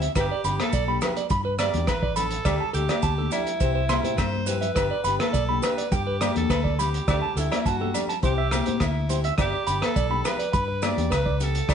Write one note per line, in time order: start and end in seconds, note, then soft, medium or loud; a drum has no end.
0.02 0.11 E5 medium
0.02 closed hi-hat soft
0.15 0.28 G1 medium
0.15 0.33 B3 medium
0.15 0.34 D4 medium
0.15 0.34 G4 medium
0.15 0.26 B4 medium
0.15 kick medium
0.15 cross-stick medium
0.15 closed hi-hat soft
0.15 low agogo medium
0.15 maracas medium
0.20 0.58 G4 medium
0.31 0.40 D5 medium
0.44 0.57 G1 medium
0.44 0.62 B3 medium
0.44 0.63 D4 medium
0.44 0.63 G4 medium
0.44 0.54 B5 medium
0.44 closed hi-hat soft
0.44 maracas medium
0.59 1.01 A4 medium
0.59 cross-stick medium
0.59 closed hi-hat soft
0.59 high conga medium
0.59 low agogo medium
0.73 0.97 B1 medium
0.73 0.83 D5 medium
0.73 kick medium
0.73 closed hi-hat soft
0.73 maracas medium
0.88 1.02 D4 soft
0.88 1.02 G4 medium
0.88 0.97 B5 medium
0.88 high conga medium
1.01 1.20 B3 medium
1.01 1.20 D4 medium
1.01 1.21 G4 medium
1.01 1.12 B4 medium
1.01 cross-stick medium
1.01 closed hi-hat soft
1.01 low conga medium
1.01 low agogo medium
1.01 maracas medium
1.17 1.26 D5 medium
1.17 closed hi-hat soft
1.30 1.68 G2 medium
1.30 1.40 B5 medium
1.30 kick medium
1.30 closed hi-hat medium
1.30 maracas medium
1.45 1.54 B4 medium
1.59 1.75 B3 medium
1.59 1.90 D5 medium
1.59 1.69 D5 medium
1.59 cross-stick medium
1.59 closed hi-hat soft
1.59 high conga medium
1.59 low agogo medium
1.59 maracas medium
1.63 1.74 G4 medium
1.74 1.86 E2 medium
1.74 1.92 D4 soft
1.74 1.92 G4 soft
1.74 closed hi-hat soft
1.74 high conga medium
1.87 2.37 A1 medium
1.87 1.97 B4 medium
1.87 2.16 B4 medium
1.87 kick medium
1.87 cross-stick medium
1.87 closed hi-hat soft
1.87 low agogo medium
1.87 maracas medium
2.03 2.12 D5 medium
2.03 kick medium
2.16 2.35 B3 medium
2.16 2.35 D4 medium
2.16 2.70 A4 medium
2.16 2.26 B5 medium
2.16 closed hi-hat soft
2.16 low conga medium
2.16 maracas medium
2.31 closed hi-hat soft
2.45 2.58 D2 medium
2.45 2.63 G3 medium
2.45 2.64 D4 medium
2.45 2.64 G4 medium
2.45 2.55 D5 medium
2.45 muted nylon-string guitar stroke medium
2.45 kick medium
2.45 cross-stick medium
2.45 closed hi-hat soft
2.45 low agogo medium
2.45 maracas medium
2.60 2.70 A5 medium
2.73 2.87 D2 medium
2.73 2.93 G3 soft
2.73 2.93 A3 soft
2.73 2.93 D4 medium
2.73 3.28 G4 medium
2.73 2.83 A4 medium
2.73 closed hi-hat soft
2.73 maracas medium
2.77 2.94 G4 medium
2.88 2.98 D5 medium
2.88 cross-stick medium
2.88 closed hi-hat medium
2.88 high conga medium
2.88 low agogo medium
2.88 maracas soft
3.02 3.28 D2 medium
3.02 3.13 A5 medium
3.02 kick medium
3.02 closed hi-hat soft
3.02 maracas medium
3.18 3.32 A3 soft
3.18 3.33 D4 soft
3.18 3.33 G4 soft
3.18 3.27 A4 medium
3.18 high conga medium
3.31 3.50 G3 soft
3.31 3.50 A3 medium
3.31 3.51 D4 medium
3.31 4.20 E4 medium
3.31 3.51 G4 medium
3.31 3.42 D5 medium
3.31 closed hi-hat soft
3.31 high conga medium
3.31 low conga medium
3.31 low agogo medium
3.31 maracas medium
3.47 closed hi-hat soft
3.47 maracas soft
3.60 3.98 C2 medium
3.60 3.79 E3 medium
3.60 3.79 C4 medium
3.60 3.79 E4 medium
3.60 3.80 G4 medium
3.60 3.70 C5 medium
3.60 kick medium
3.60 closed hi-hat soft
3.60 low conga medium
3.60 maracas medium
3.75 3.84 C5 medium
3.89 4.04 E3 medium
3.89 4.04 C4 medium
3.89 4.03 E4 medium
3.89 4.02 G4 medium
3.89 3.99 C6 medium
3.89 cross-stick medium
3.89 closed hi-hat soft
3.89 high conga medium
3.89 low agogo medium
3.89 maracas medium
4.03 4.16 A2 medium
4.03 4.22 C4 soft
4.03 4.21 E4 soft
4.03 4.21 G4 soft
4.03 4.14 C5 medium
4.03 closed hi-hat soft
4.03 high conga medium
4.03 maracas soft
4.18 4.68 G2 medium
4.18 4.49 C5 medium
4.18 kick medium
4.18 cross-stick medium
4.18 closed hi-hat soft
4.18 high conga soft
4.18 low agogo medium
4.18 maracas medium
4.33 high conga medium
4.46 4.65 E3 medium
4.46 4.65 C4 medium
4.46 4.65 E4 medium
4.46 4.66 G4 medium
4.46 5.20 B4 medium
4.46 4.57 C5 medium
4.46 closed hi-hat soft
4.46 low conga medium
4.46 maracas loud
4.61 4.71 E5 medium
4.61 closed hi-hat soft
4.61 low conga medium
4.75 4.89 G1 medium
4.75 4.94 B3 medium
4.75 4.94 D4 medium
4.75 4.94 G4 medium
4.75 4.85 B4 medium
4.75 kick medium
4.75 cross-stick medium
4.75 closed hi-hat soft
4.75 low agogo medium
4.75 maracas medium
4.91 5.00 D5 medium
5.04 5.17 G1 medium
5.04 5.23 B3 medium
5.04 5.23 D4 medium
5.04 5.24 G4 medium
5.04 5.14 B5 medium
5.04 closed hi-hat soft
5.04 maracas medium
5.19 5.66 A4 medium
5.19 5.29 B4 medium
5.19 cross-stick medium
5.19 closed hi-hat soft
5.19 high conga medium
5.19 low agogo medium
5.33 5.58 B1 medium
5.33 5.43 D5 medium
5.33 kick medium
5.33 closed hi-hat soft
5.33 maracas medium
5.49 5.64 D4 soft
5.49 5.63 G4 soft
5.49 5.58 B5 medium
5.49 high conga medium
5.62 5.81 B3 soft
5.62 5.82 D4 medium
5.62 5.82 G4 medium
5.62 5.72 B4 medium
5.62 5.96 B4 medium
5.62 cross-stick medium
5.62 closed hi-hat soft
5.62 low agogo medium
5.62 maracas loud
5.78 5.87 D5 medium
5.78 closed hi-hat soft
5.91 6.29 G2 medium
5.91 6.37 G4 medium
5.91 6.02 G5 medium
5.91 kick medium
5.91 closed hi-hat soft
5.91 maracas medium
6.07 6.16 B4 medium
6.21 6.35 B3 medium
6.21 6.36 D4 medium
6.21 6.35 G4 medium
6.21 6.31 D5 medium
6.21 cross-stick medium
6.21 closed hi-hat soft
6.21 high conga medium
6.21 low agogo medium
6.21 maracas medium
6.36 6.48 E2 medium
6.36 6.54 D4 soft
6.36 6.53 G4 soft
6.36 6.81 A4 medium
6.36 closed hi-hat soft
6.36 high conga medium
6.50 6.99 D2 medium
6.50 6.59 B4 medium
6.50 kick medium
6.50 cross-stick medium
6.50 closed hi-hat soft
6.50 low agogo medium
6.50 maracas medium
6.64 6.73 D5 medium
6.64 kick medium
6.79 6.96 B3 medium
6.79 6.97 D4 medium
6.79 7.08 G4 medium
6.79 6.97 G4 medium
6.79 6.88 B5 medium
6.79 closed hi-hat soft
6.79 low conga medium
6.79 maracas medium
6.94 closed hi-hat soft
7.08 7.20 D2 medium
7.08 7.26 G3 medium
7.08 7.26 A3 medium
7.08 7.26 D4 medium
7.08 7.26 G4 medium
7.08 7.40 G4 medium
7.08 7.17 D5 medium
7.08 kick medium
7.08 cross-stick medium
7.08 closed hi-hat soft
7.08 low agogo medium
7.08 maracas medium
7.22 7.31 A5 medium
7.36 7.48 D2 medium
7.36 7.54 G3 medium
7.36 7.54 A3 medium
7.36 7.55 D4 medium
7.36 7.69 E4 medium
7.36 7.55 G4 medium
7.36 7.46 A4 medium
7.36 closed hi-hat medium
7.36 maracas medium
7.52 7.61 D5 medium
7.52 cross-stick medium
7.52 closed hi-hat medium
7.52 high conga medium
7.52 low agogo medium
7.66 7.90 G2 medium
7.66 7.95 F#4 medium
7.66 7.75 A5 medium
7.66 kick medium
7.66 closed hi-hat soft
7.66 maracas medium
7.80 7.94 A3 soft
7.80 7.94 D4 soft
7.80 7.94 G4 medium
7.80 7.90 A4 medium
7.80 high conga medium
7.94 8.12 G3 soft
7.94 8.12 A3 medium
7.94 8.13 D4 medium
7.94 8.13 G4 medium
7.94 8.04 D5 medium
7.94 closed hi-hat soft
7.94 low conga medium
7.94 low agogo medium
7.94 maracas medium
8.09 8.18 A5 medium
8.09 closed hi-hat soft
8.22 8.60 C2 medium
8.22 8.40 E3 medium
8.22 8.40 C4 medium
8.22 8.41 E4 medium
8.22 8.41 G4 medium
8.22 8.84 G4 medium
8.22 8.33 C5 medium
8.22 kick medium
8.22 closed hi-hat soft
8.22 maracas medium
8.38 8.47 E5 medium
8.51 8.67 E3 medium
8.51 8.66 C4 medium
8.51 8.66 E4 medium
8.51 8.65 G4 medium
8.51 cross-stick medium
8.51 closed hi-hat soft
8.51 high conga medium
8.51 low agogo medium
8.51 maracas medium
8.66 8.79 A2 medium
8.66 8.84 C4 soft
8.66 8.84 E4 soft
8.66 8.76 C5 medium
8.66 muted nylon-string guitar stroke medium
8.66 closed hi-hat soft
8.66 high conga medium
8.80 9.30 D2 medium
8.80 9.25 E4 medium
8.80 kick medium
8.80 cross-stick medium
8.80 closed hi-hat soft
8.80 low agogo medium
8.80 maracas medium
9.09 9.27 E3 medium
9.09 9.27 C4 medium
9.09 9.28 E4 medium
9.09 9.28 G4 medium
9.09 9.19 C5 medium
9.09 closed hi-hat soft
9.09 low conga medium
9.09 maracas medium
9.24 9.34 E5 medium
9.24 closed hi-hat soft
9.37 9.51 G1 medium
9.37 9.56 B3 medium
9.37 9.56 D4 medium
9.37 9.56 G4 medium
9.37 9.81 G4 medium
9.37 9.48 D5 medium
9.37 kick medium
9.37 cross-stick medium
9.37 closed hi-hat soft
9.37 low agogo medium
9.37 maracas medium
9.53 9.62 D5 medium
9.65 9.80 G1 medium
9.65 9.84 B3 medium
9.65 9.85 D4 medium
9.65 9.85 G4 medium
9.65 9.77 B5 medium
9.65 closed hi-hat soft
9.65 maracas medium
9.82 10.30 A4 medium
9.82 9.91 B4 medium
9.82 cross-stick medium
9.82 closed hi-hat soft
9.82 high conga medium
9.82 low agogo medium
9.96 10.21 B1 medium
9.96 10.06 D5 medium
9.96 kick medium
9.96 closed hi-hat soft
9.96 maracas medium
10.10 10.23 D4 soft
10.10 10.24 G4 medium
10.10 10.20 B5 medium
10.10 high conga medium
10.24 10.42 B3 medium
10.24 10.42 D4 medium
10.24 10.43 G4 medium
10.24 10.35 B4 medium
10.24 cross-stick medium
10.24 closed hi-hat soft
10.24 low conga medium
10.24 low agogo medium
10.24 maracas medium
10.28 10.87 B4 medium
10.39 10.48 D5 medium
10.39 closed hi-hat soft
10.53 10.91 G2 medium
10.53 10.63 B5 medium
10.53 kick medium
10.53 closed hi-hat soft
10.53 maracas medium
10.68 muted clean electric guitar stroke medium
10.82 10.97 B3 medium
10.82 10.97 D4 medium
10.82 10.95 G4 medium
10.82 10.92 D5 medium
10.82 cross-stick medium
10.82 closed hi-hat medium
10.82 high conga medium
10.82 low agogo medium
10.82 maracas medium
10.86 11.13 D5 medium
10.96 11.09 E2 medium
10.96 11.15 D4 soft
10.96 11.14 G4 soft
10.96 closed hi-hat soft
10.96 high conga medium
11.10 11.60 C#2 loud
11.10 11.20 B4 medium
11.10 kick medium
11.10 cross-stick medium
11.10 closed hi-hat soft
11.10 low agogo medium
11.10 maracas medium
11.15 11.45 B4 medium
11.26 11.35 D5 medium
11.26 kick medium
11.38 11.57 B3 medium
11.38 11.58 D4 medium
11.38 11.58 G4 medium
11.38 closed hi-hat soft
11.38 low conga medium
11.38 maracas medium
11.43 11.74 A4 medium
11.55 closed hi-hat soft
11.67 11.74 D2 medium
11.67 11.74 G3 medium
11.67 11.74 A3 medium
11.67 11.74 D4 medium
11.67 11.74 G4 medium
11.67 11.74 D5 medium
11.67 kick medium
11.67 cross-stick medium
11.67 closed hi-hat soft
11.67 low agogo medium
11.67 maracas medium